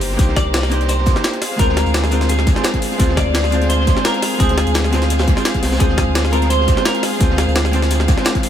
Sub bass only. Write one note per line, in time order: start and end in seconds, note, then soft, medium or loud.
0.00 0.18 G1 medium
0.19 0.44 C2 loud
0.46 1.14 C2 loud
1.59 1.85 D2 loud
1.86 2.55 D2 loud
3.00 3.25 D2 loud
3.26 3.95 D2 loud
4.40 4.65 D2 loud
4.67 5.35 D2 loud
5.63 5.79 C2 medium
5.80 6.06 D2 loud
6.07 6.76 D2 loud
7.21 7.46 D2 loud
7.47 8.16 D2 loud